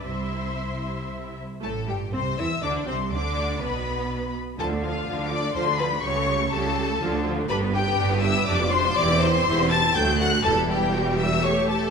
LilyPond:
<<
  \new Staff \with { instrumentName = "Violin section" } { \time 3/4 \key c \major \tempo 4 = 122 c'''2 r4 | a''8 g''8 c'''8 e'''8 d'''8 c'''8 | d'''4 b''4. r8 | a''8 f''4 d'''8 c'''8 b''8 |
cis'''4 a''4. r8 | \key g \major b''8 g''4 e'''8 d'''8 c'''8 | d'''8 c'''4 a'''8 g'''8 fis'''8 | a''8 g''4 e'''8 cis'''8 a''8 | }
  \new Staff \with { instrumentName = "Violin section" } { \time 3/4 \key c \major <e' c''>2~ <e' c''>8 r8 | a'8 g'8 c''8 e''8 d''8 c''8 | d''4 b'4. r8 | a'8 f'4 d''8 c''8 b'8 |
cis''4 a'4. r8 | \key g \major b'8 g'4 e''8 d''8 c''8 | d''8 c''4 a''8 g''8 fis''8 | a'8 g'4 e''8 cis''8 a'8 | }
  \new Staff \with { instrumentName = "Viola section" } { \time 3/4 \key c \major << { e''2~ e''8 r8 | a8 g8 c'8 e'8 d'8 c'8 | d'4 b4. r8 | f'16 d'16 f'16 d'16 f'16 d'16 f'16 d'16 f'16 d'16 f'16 d'16 |
g'16 a'16 g'16 a'16 g'16 a'16 g'16 a'16 f'16 d'16 f'16 d'16 | \key g \major g'16 b'16 g'16 b'16 g'16 b'16 g'16 b'16 g'16 f'16 g'16 f'16 | g'16 e'16 g'16 e'16 g'16 e'16 g'16 e'16 a'16 fis'16 a'16 fis'16 | e'4 fis'4 g'4 | } \\ { r2. | r2. | r2. | f16 a16 f16 a16 f16 a16 f16 a16 f16 a16 f16 a16 |
g16 a16 g16 a16 g16 a16 g16 a16 f16 a16 f16 a16 | d'16 b16 d'16 b16 d'16 b16 d'16 b16 d'16 b16 d'16 b16 | e'16 c'16 e'16 c'16 e'16 c'16 e'16 c'16 fis16 a16 fis16 a16 | g2 a4 | } >> }
  \new Staff \with { instrumentName = "Cello section" } { \clef bass \time 3/4 \key c \major c2~ c8 r8 | a,8 g,8 c8 e8 d8 c8 | d4 b,4. r8 | d4 d4 d4 |
cis4 cis4 d4 | \key g \major g,4 g,4 f,4 | e,4 e,4 d,4 | e,2. | }
  \new Staff \with { instrumentName = "Double bass section" } { \clef bass \time 3/4 \key c \major c,2~ c,8 r8 | a,,8 g,,8 c,8 e,8 d,8 c,8 | d,4 b,,4. r8 | d,4 d,4 d,4 |
cis,4 cis,4 d,4 | \key g \major g,,4 g,,4 f,,4 | e,,4 e,,4 d,4 | e,,2. | }
>>